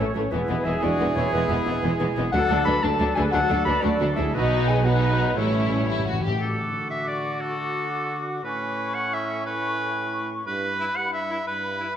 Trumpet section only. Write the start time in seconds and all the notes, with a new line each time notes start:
Already playing: C#5
0.33 G#4
2.34 A4
2.84 A4
3.34 A4
3.84 A4
4.34 B4
4.86 B4
5.37 C#5
6.41 F#4
8.45 C#4
10.80 E4
11.30 E4
11.80 E4